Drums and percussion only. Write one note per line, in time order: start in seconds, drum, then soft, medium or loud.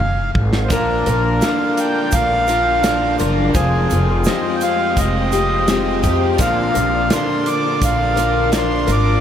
0.00 mid tom medium
0.35 kick loud
0.53 snare medium
0.70 kick loud
0.70 closed hi-hat medium
0.70 shaker medium
1.06 closed hi-hat medium
1.42 snare loud
1.42 closed hi-hat medium
1.42 shaker loud
1.77 closed hi-hat medium
1.77 shaker medium
2.12 kick medium
2.12 closed hi-hat loud
2.12 shaker loud
2.47 closed hi-hat medium
2.47 shaker medium
2.84 snare loud
2.84 closed hi-hat medium
2.84 shaker loud
3.18 closed hi-hat medium
3.18 shaker medium
3.54 kick loud
3.54 closed hi-hat medium
3.54 shaker medium
3.90 closed hi-hat medium
3.90 shaker medium
4.24 snare loud
4.24 closed hi-hat medium
4.24 shaker loud
4.61 closed hi-hat medium
4.61 shaker medium
4.97 kick medium
4.97 closed hi-hat loud
4.97 shaker loud
5.32 closed hi-hat medium
5.32 shaker medium
5.68 snare loud
5.68 closed hi-hat medium
5.68 shaker loud
6.03 kick medium
6.03 closed hi-hat medium
6.03 shaker medium
6.38 kick loud
6.38 closed hi-hat loud
6.38 shaker loud
6.75 closed hi-hat medium
6.75 shaker medium
7.10 snare loud
7.10 closed hi-hat medium
7.10 shaker loud
7.46 closed hi-hat medium
7.46 shaker medium
7.82 kick medium
7.82 closed hi-hat loud
7.82 shaker loud
8.17 closed hi-hat medium
8.17 shaker medium
8.53 snare loud
8.53 closed hi-hat loud
8.53 shaker loud
8.88 closed hi-hat medium
8.88 shaker medium